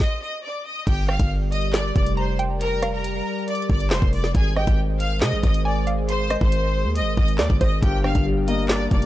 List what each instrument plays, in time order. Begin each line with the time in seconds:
0.00 violin section D#5 D#6, kick, snare
0.22 violin section D#5 D#6
0.43 violin section D5 D6
0.65 violin section D#5 D#6
0.87 808-style bass G1, analog synth pad G3 G4 A#4 D5, violin section G4 G5, kick, closed hi-hat, crash
1.08 violin section F5 F6, synth pluck G5, cross-stick
1.19 808-style bass G1, kick, closed hi-hat
1.52 violin section D#5 D#6, closed hi-hat
1.73 violin section D5 D6, snare, clap, closed hi-hat
1.96 808-style bass F1, violin section D5 D6, kick, closed hi-hat
2.06 closed hi-hat
2.17 violin section C5 C6, synth pluck A#5
2.39 synth pluck G5, closed hi-hat
2.61 violin section A#4 A#5, closed hi-hat
2.82 synth pluck F5, cross-stick, closed hi-hat
2.94 violin section A#4 A#5
3.04 closed hi-hat
3.48 violin section D5 D6, closed hi-hat
3.55 closed hi-hat
3.62 closed hi-hat
3.70 808-style bass G1, violin section D5 D6, kick
3.80 closed hi-hat
3.90 808-style bass F1, violin section C5 C6, snare, clap
4.02 808-style bass F1, kick
4.13 violin section D5 D6, open hi-hat
4.24 snare
4.35 808-style bass G#1, analog synth pad G#3 G#4 C5, violin section G#4 G#5, kick, closed hi-hat
4.56 violin section G4 G5, synth pluck D#5, cross-stick
4.67 808-style bass G#1, kick, closed hi-hat
5.00 violin section F5 F6, closed hi-hat
5.21 808-style bass C3, violin section D#5 D#6, snare, clap, closed hi-hat
5.33 808-style bass G#1
5.43 808-style bass G#1, violin section D#5 D#6, kick, closed hi-hat
5.54 closed hi-hat
5.65 violin section D5 D6, synth pluck G#5
5.87 synth pluck F5, closed hi-hat
6.09 violin section C5 C6, closed hi-hat
6.30 synth pluck D#5, cross-stick, closed hi-hat
6.41 808-style bass G#1, violin section C5 C6, kick
6.52 closed hi-hat
6.85 808-style bass D#2
6.95 violin section D#5 D#6, closed hi-hat
7.01 808-style bass G#1
7.17 808-style bass G#1, violin section D#5 D#6, kick
7.28 closed hi-hat
7.38 808-style bass D#2, synth pluck D5, violin section D5 D6, snare, clap
7.50 808-style bass G1, kick
7.61 808-style bass G#1, synth pluck C5, violin section D#5 D#6, kick, closed hi-hat
7.82 808-style bass G1, felt piano G2, analog synth pad G3 G4 A#4 D5, violin section G4 G5, kick, closed hi-hat
8.04 felt piano D3, violin section F5 F6, synth pluck G5, cross-stick
8.15 808-style bass G1, kick, closed hi-hat
8.26 felt piano G3
8.48 felt piano A#3, violin section D#5 D#6, closed hi-hat
8.69 felt piano D4, violin section D5 D6, snare, clap, closed hi-hat
8.91 808-style bass F1, felt piano G2, violin section D5 D6, kick, closed hi-hat
9.02 closed hi-hat